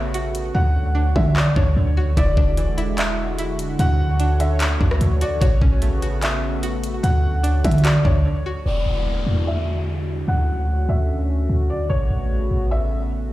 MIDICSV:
0, 0, Header, 1, 7, 480
1, 0, Start_track
1, 0, Tempo, 405405
1, 652, Time_signature, 4, 2, 24, 8
1, 15782, End_track
2, 0, Start_track
2, 0, Title_t, "Felt piano"
2, 0, Program_c, 0, 0
2, 0, Note_on_c, 0, 76, 85
2, 144, Note_off_c, 0, 76, 0
2, 645, Note_on_c, 0, 78, 95
2, 1325, Note_off_c, 0, 78, 0
2, 1369, Note_on_c, 0, 76, 90
2, 1599, Note_off_c, 0, 76, 0
2, 1602, Note_on_c, 0, 74, 89
2, 1835, Note_off_c, 0, 74, 0
2, 1846, Note_on_c, 0, 73, 85
2, 2525, Note_off_c, 0, 73, 0
2, 2571, Note_on_c, 0, 74, 100
2, 3484, Note_off_c, 0, 74, 0
2, 3531, Note_on_c, 0, 76, 89
2, 3983, Note_off_c, 0, 76, 0
2, 4494, Note_on_c, 0, 78, 114
2, 5170, Note_off_c, 0, 78, 0
2, 5211, Note_on_c, 0, 76, 85
2, 6124, Note_off_c, 0, 76, 0
2, 6167, Note_on_c, 0, 74, 82
2, 6398, Note_off_c, 0, 74, 0
2, 6402, Note_on_c, 0, 73, 93
2, 7319, Note_off_c, 0, 73, 0
2, 7373, Note_on_c, 0, 76, 83
2, 7823, Note_off_c, 0, 76, 0
2, 8326, Note_on_c, 0, 78, 97
2, 9006, Note_off_c, 0, 78, 0
2, 9051, Note_on_c, 0, 76, 87
2, 9280, Note_off_c, 0, 76, 0
2, 9285, Note_on_c, 0, 74, 87
2, 9516, Note_off_c, 0, 74, 0
2, 9525, Note_on_c, 0, 73, 85
2, 10205, Note_off_c, 0, 73, 0
2, 10251, Note_on_c, 0, 74, 94
2, 11164, Note_off_c, 0, 74, 0
2, 11216, Note_on_c, 0, 76, 81
2, 11665, Note_off_c, 0, 76, 0
2, 12174, Note_on_c, 0, 78, 100
2, 12850, Note_off_c, 0, 78, 0
2, 12893, Note_on_c, 0, 76, 77
2, 13805, Note_off_c, 0, 76, 0
2, 13850, Note_on_c, 0, 74, 74
2, 14079, Note_off_c, 0, 74, 0
2, 14084, Note_on_c, 0, 73, 90
2, 15001, Note_off_c, 0, 73, 0
2, 15052, Note_on_c, 0, 76, 82
2, 15503, Note_off_c, 0, 76, 0
2, 15782, End_track
3, 0, Start_track
3, 0, Title_t, "Synth pluck"
3, 0, Program_c, 1, 84
3, 0, Note_on_c, 1, 57, 75
3, 0, Note_on_c, 1, 61, 79
3, 0, Note_on_c, 1, 66, 98
3, 156, Note_off_c, 1, 66, 0
3, 171, Note_on_c, 1, 66, 100
3, 411, Note_off_c, 1, 61, 0
3, 649, Note_off_c, 1, 57, 0
3, 651, Note_off_c, 1, 66, 0
3, 652, Note_on_c, 1, 50, 75
3, 1122, Note_on_c, 1, 62, 85
3, 1356, Note_off_c, 1, 50, 0
3, 1370, Note_on_c, 1, 50, 79
3, 1604, Note_on_c, 1, 66, 99
3, 1834, Note_off_c, 1, 62, 0
3, 1848, Note_on_c, 1, 62, 77
3, 2078, Note_off_c, 1, 50, 0
3, 2092, Note_on_c, 1, 50, 72
3, 2320, Note_off_c, 1, 66, 0
3, 2334, Note_on_c, 1, 66, 100
3, 2570, Note_off_c, 1, 62, 0
3, 2572, Note_off_c, 1, 50, 0
3, 2573, Note_off_c, 1, 66, 0
3, 2576, Note_on_c, 1, 64, 101
3, 2808, Note_on_c, 1, 62, 81
3, 3049, Note_on_c, 1, 52, 81
3, 3273, Note_off_c, 1, 64, 0
3, 3287, Note_on_c, 1, 64, 94
3, 4000, Note_off_c, 1, 64, 0
3, 4014, Note_on_c, 1, 64, 100
3, 4250, Note_off_c, 1, 62, 0
3, 4487, Note_on_c, 1, 50, 77
3, 4491, Note_off_c, 1, 52, 0
3, 4493, Note_off_c, 1, 64, 0
3, 4972, Note_on_c, 1, 62, 86
3, 5198, Note_off_c, 1, 50, 0
3, 5212, Note_on_c, 1, 50, 81
3, 5455, Note_on_c, 1, 66, 96
3, 5676, Note_off_c, 1, 62, 0
3, 5690, Note_on_c, 1, 62, 82
3, 5915, Note_off_c, 1, 50, 0
3, 5929, Note_on_c, 1, 50, 74
3, 6162, Note_off_c, 1, 66, 0
3, 6176, Note_on_c, 1, 66, 97
3, 6398, Note_off_c, 1, 66, 0
3, 6410, Note_off_c, 1, 50, 0
3, 6411, Note_off_c, 1, 62, 0
3, 6413, Note_on_c, 1, 66, 98
3, 6652, Note_on_c, 1, 61, 79
3, 6888, Note_on_c, 1, 57, 71
3, 7120, Note_off_c, 1, 66, 0
3, 7135, Note_on_c, 1, 66, 96
3, 7837, Note_off_c, 1, 66, 0
3, 7852, Note_on_c, 1, 66, 105
3, 8092, Note_off_c, 1, 61, 0
3, 8330, Note_off_c, 1, 57, 0
3, 8332, Note_off_c, 1, 66, 0
3, 8334, Note_on_c, 1, 50, 73
3, 8803, Note_on_c, 1, 62, 86
3, 9037, Note_off_c, 1, 50, 0
3, 9051, Note_on_c, 1, 50, 80
3, 9286, Note_on_c, 1, 66, 94
3, 9513, Note_off_c, 1, 62, 0
3, 9528, Note_on_c, 1, 62, 77
3, 9758, Note_off_c, 1, 50, 0
3, 9772, Note_on_c, 1, 50, 74
3, 10002, Note_off_c, 1, 66, 0
3, 10016, Note_on_c, 1, 66, 98
3, 10250, Note_off_c, 1, 62, 0
3, 10252, Note_off_c, 1, 50, 0
3, 10254, Note_off_c, 1, 66, 0
3, 15782, End_track
4, 0, Start_track
4, 0, Title_t, "Analog synth pad"
4, 0, Program_c, 2, 89
4, 0, Note_on_c, 2, 49, 91
4, 0, Note_on_c, 2, 57, 80
4, 0, Note_on_c, 2, 59, 80
4, 0, Note_on_c, 2, 66, 99
4, 632, Note_off_c, 2, 49, 0
4, 632, Note_off_c, 2, 59, 0
4, 648, Note_on_c, 2, 50, 86
4, 648, Note_on_c, 2, 73, 78
4, 2524, Note_off_c, 2, 66, 0
4, 2525, Note_off_c, 2, 57, 0
4, 2551, Note_off_c, 2, 73, 0
4, 2571, Note_on_c, 2, 56, 80
4, 2571, Note_on_c, 2, 64, 81
4, 2571, Note_on_c, 2, 66, 94
4, 4472, Note_off_c, 2, 56, 0
4, 4472, Note_off_c, 2, 64, 0
4, 4489, Note_on_c, 2, 57, 78
4, 4490, Note_on_c, 2, 73, 81
4, 6363, Note_off_c, 2, 50, 0
4, 6373, Note_off_c, 2, 66, 0
4, 6392, Note_off_c, 2, 73, 0
4, 6409, Note_on_c, 2, 49, 88
4, 6411, Note_on_c, 2, 59, 78
4, 6411, Note_on_c, 2, 66, 93
4, 8311, Note_off_c, 2, 49, 0
4, 8312, Note_off_c, 2, 59, 0
4, 8332, Note_on_c, 2, 50, 85
4, 8332, Note_on_c, 2, 73, 78
4, 10203, Note_off_c, 2, 57, 0
4, 10213, Note_off_c, 2, 66, 0
4, 10233, Note_off_c, 2, 50, 0
4, 10233, Note_off_c, 2, 73, 0
4, 10251, Note_on_c, 2, 56, 75
4, 10251, Note_on_c, 2, 64, 74
4, 10252, Note_on_c, 2, 50, 80
4, 10252, Note_on_c, 2, 66, 92
4, 12152, Note_off_c, 2, 56, 0
4, 12152, Note_off_c, 2, 64, 0
4, 12172, Note_on_c, 2, 61, 78
4, 12174, Note_on_c, 2, 57, 77
4, 14054, Note_off_c, 2, 50, 0
4, 14073, Note_off_c, 2, 61, 0
4, 14088, Note_on_c, 2, 49, 87
4, 14089, Note_on_c, 2, 59, 74
4, 15782, Note_off_c, 2, 49, 0
4, 15782, Note_off_c, 2, 57, 0
4, 15782, Note_off_c, 2, 59, 0
4, 15782, Note_off_c, 2, 66, 0
4, 15782, End_track
5, 0, Start_track
5, 0, Title_t, "808-style bass"
5, 0, Program_c, 3, 38
5, 0, Note_on_c, 3, 33, 107
5, 603, Note_off_c, 3, 33, 0
5, 651, Note_on_c, 3, 38, 113
5, 1343, Note_off_c, 3, 38, 0
5, 1370, Note_on_c, 3, 50, 100
5, 1832, Note_off_c, 3, 50, 0
5, 1851, Note_on_c, 3, 38, 102
5, 2082, Note_off_c, 3, 38, 0
5, 2092, Note_on_c, 3, 38, 115
5, 2553, Note_off_c, 3, 38, 0
5, 2571, Note_on_c, 3, 28, 116
5, 2802, Note_off_c, 3, 28, 0
5, 2808, Note_on_c, 3, 28, 106
5, 4442, Note_off_c, 3, 28, 0
5, 4490, Note_on_c, 3, 38, 117
5, 5644, Note_off_c, 3, 38, 0
5, 5691, Note_on_c, 3, 38, 108
5, 5922, Note_off_c, 3, 38, 0
5, 5932, Note_on_c, 3, 38, 120
5, 6163, Note_off_c, 3, 38, 0
5, 6412, Note_on_c, 3, 33, 117
5, 6642, Note_off_c, 3, 33, 0
5, 6649, Note_on_c, 3, 33, 108
5, 8283, Note_off_c, 3, 33, 0
5, 8332, Note_on_c, 3, 38, 120
5, 9023, Note_off_c, 3, 38, 0
5, 9052, Note_on_c, 3, 50, 105
5, 9513, Note_off_c, 3, 50, 0
5, 9532, Note_on_c, 3, 38, 107
5, 9763, Note_off_c, 3, 38, 0
5, 10251, Note_on_c, 3, 28, 113
5, 10482, Note_off_c, 3, 28, 0
5, 10491, Note_on_c, 3, 28, 105
5, 10952, Note_off_c, 3, 28, 0
5, 10969, Note_on_c, 3, 40, 101
5, 12123, Note_off_c, 3, 40, 0
5, 12170, Note_on_c, 3, 38, 109
5, 12862, Note_off_c, 3, 38, 0
5, 12890, Note_on_c, 3, 38, 104
5, 13582, Note_off_c, 3, 38, 0
5, 13611, Note_on_c, 3, 38, 107
5, 13842, Note_off_c, 3, 38, 0
5, 14091, Note_on_c, 3, 33, 115
5, 14322, Note_off_c, 3, 33, 0
5, 14332, Note_on_c, 3, 33, 103
5, 14793, Note_off_c, 3, 33, 0
5, 14811, Note_on_c, 3, 33, 102
5, 15782, Note_off_c, 3, 33, 0
5, 15782, End_track
6, 0, Start_track
6, 0, Title_t, "Downlifter"
6, 0, Program_c, 4, 103
6, 10253, Note_on_c, 4, 60, 80
6, 14092, Note_off_c, 4, 60, 0
6, 15782, End_track
7, 0, Start_track
7, 0, Title_t, "Drums"
7, 169, Note_on_c, 9, 42, 77
7, 287, Note_off_c, 9, 42, 0
7, 412, Note_on_c, 9, 42, 85
7, 530, Note_off_c, 9, 42, 0
7, 1370, Note_on_c, 9, 36, 93
7, 1489, Note_off_c, 9, 36, 0
7, 1615, Note_on_c, 9, 39, 127
7, 1734, Note_off_c, 9, 39, 0
7, 1851, Note_on_c, 9, 36, 99
7, 1969, Note_off_c, 9, 36, 0
7, 2571, Note_on_c, 9, 36, 114
7, 2571, Note_on_c, 9, 42, 81
7, 2689, Note_off_c, 9, 36, 0
7, 2690, Note_off_c, 9, 42, 0
7, 2808, Note_on_c, 9, 36, 95
7, 2926, Note_off_c, 9, 36, 0
7, 3048, Note_on_c, 9, 42, 75
7, 3166, Note_off_c, 9, 42, 0
7, 3291, Note_on_c, 9, 42, 74
7, 3409, Note_off_c, 9, 42, 0
7, 3527, Note_on_c, 9, 42, 84
7, 3535, Note_on_c, 9, 39, 126
7, 3645, Note_off_c, 9, 42, 0
7, 3654, Note_off_c, 9, 39, 0
7, 4008, Note_on_c, 9, 42, 78
7, 4126, Note_off_c, 9, 42, 0
7, 4251, Note_on_c, 9, 42, 86
7, 4369, Note_off_c, 9, 42, 0
7, 4490, Note_on_c, 9, 42, 75
7, 4609, Note_off_c, 9, 42, 0
7, 4968, Note_on_c, 9, 42, 75
7, 5086, Note_off_c, 9, 42, 0
7, 5210, Note_on_c, 9, 42, 73
7, 5328, Note_off_c, 9, 42, 0
7, 5447, Note_on_c, 9, 42, 84
7, 5456, Note_on_c, 9, 39, 127
7, 5566, Note_off_c, 9, 42, 0
7, 5574, Note_off_c, 9, 39, 0
7, 5692, Note_on_c, 9, 36, 94
7, 5810, Note_off_c, 9, 36, 0
7, 5816, Note_on_c, 9, 37, 97
7, 5930, Note_on_c, 9, 42, 77
7, 5934, Note_off_c, 9, 37, 0
7, 6049, Note_off_c, 9, 42, 0
7, 6172, Note_on_c, 9, 42, 84
7, 6291, Note_off_c, 9, 42, 0
7, 6412, Note_on_c, 9, 36, 112
7, 6412, Note_on_c, 9, 42, 78
7, 6530, Note_off_c, 9, 36, 0
7, 6530, Note_off_c, 9, 42, 0
7, 6649, Note_on_c, 9, 36, 95
7, 6767, Note_off_c, 9, 36, 0
7, 6889, Note_on_c, 9, 42, 76
7, 7008, Note_off_c, 9, 42, 0
7, 7132, Note_on_c, 9, 42, 72
7, 7251, Note_off_c, 9, 42, 0
7, 7369, Note_on_c, 9, 42, 83
7, 7377, Note_on_c, 9, 39, 127
7, 7487, Note_off_c, 9, 42, 0
7, 7496, Note_off_c, 9, 39, 0
7, 7850, Note_on_c, 9, 42, 78
7, 7968, Note_off_c, 9, 42, 0
7, 8093, Note_on_c, 9, 42, 85
7, 8212, Note_off_c, 9, 42, 0
7, 8332, Note_on_c, 9, 42, 78
7, 8451, Note_off_c, 9, 42, 0
7, 8810, Note_on_c, 9, 42, 78
7, 8928, Note_off_c, 9, 42, 0
7, 9052, Note_on_c, 9, 36, 92
7, 9053, Note_on_c, 9, 42, 74
7, 9133, Note_off_c, 9, 42, 0
7, 9133, Note_on_c, 9, 42, 59
7, 9170, Note_off_c, 9, 36, 0
7, 9214, Note_off_c, 9, 42, 0
7, 9214, Note_on_c, 9, 42, 44
7, 9289, Note_off_c, 9, 42, 0
7, 9289, Note_on_c, 9, 42, 84
7, 9297, Note_on_c, 9, 39, 127
7, 9408, Note_off_c, 9, 42, 0
7, 9416, Note_off_c, 9, 39, 0
7, 9532, Note_on_c, 9, 36, 101
7, 9651, Note_off_c, 9, 36, 0
7, 15782, End_track
0, 0, End_of_file